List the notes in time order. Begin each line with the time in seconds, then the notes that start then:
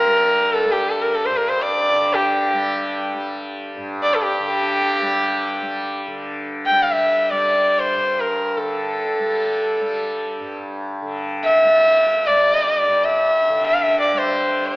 Already playing: G2 D3 G3 A#4
0.05 G3
0.54 A4
0.65 G3
0.72 G4
0.90 A4
1.02 A#4
1.14 A4
1.25 C5
1.29 G2
1.36 A#4
1.48 C5
1.62 D5
1.90 D3
2.14 G4
2.53 G3
3.14 G3
3.77 G2
4.03 D5
4.15 A4
4.22 G4
4.40 D3
5.01 G3
5.62 G3
6.07 D3
6.66 G5
6.70 G3
6.82 F5
6.92 E5
7.31 G3 D5
7.79 C5
7.95 G2
8.20 A#4
8.57 D3 A4
9.19 G3
9.81 G3
10.41 G2
11.02 D3
11.44 E5
11.64 G3
12.27 G3 D5
12.87 G2
13.04 E5
13.49 D3
13.66 E5
13.74 F5
13.82 E5
14.00 D5
14.13 G3
14.18 C5
14.67 D5